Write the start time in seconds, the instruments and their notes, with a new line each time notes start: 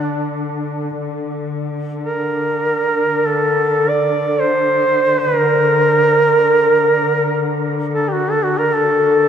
Already playing: cello section D3, duduk D4
1.02 cello section D3
2.04 duduk A#4
3.26 duduk A4
3.89 duduk D5
4.40 duduk C5
5.19 duduk B4
5.38 duduk A#4
7.94 duduk A4
8.09 duduk F#4 G4
8.31 duduk A4
8.44 duduk F#4
8.58 duduk A#4
8.75 duduk A4